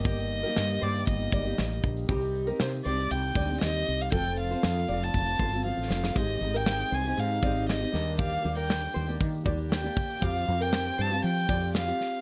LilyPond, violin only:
\new Staff \with { instrumentName = "Violin" } { \time 4/4 \key ees \lydian \tempo 4 = 118 ees''4. d''8 ees''4. r8 | r4 c''8 d''8 g''4 ees''8. f''16 | g''8 f''4~ f''16 a''4~ a''16 f''4 | ees''8. g''8. aes''8 f''4 ees''4 |
f''8. g''4 r4 r16 g''4 | f''8. g''8. a''8 g''4 f''4 | }